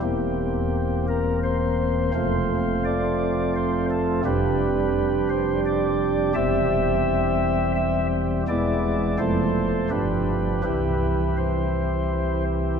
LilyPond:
<<
  \new Staff \with { instrumentName = "Pipe organ" } { \time 3/4 \key c \major \tempo 4 = 85 g'4. bes'8 c''4 | c''4 d''4 c''8 a'8 | b'4. c''8 d''4 | e''2 e''8 r8 |
d''4 c''4 b'4 | b'4 c''4. r8 | }
  \new Staff \with { instrumentName = "Pipe organ" } { \clef bass \time 3/4 \key c \major <e,, e, bes c'>2. | <f,, f, a c' f'>2. | <f,, f, g d' g'>2. | <e,, e, g c' g'>2. |
<e,, e, gis b e'>4 <f,, f, f a a'>4 <g,, g, f d' g'>4 | <c, c e e' g'>2. | }
>>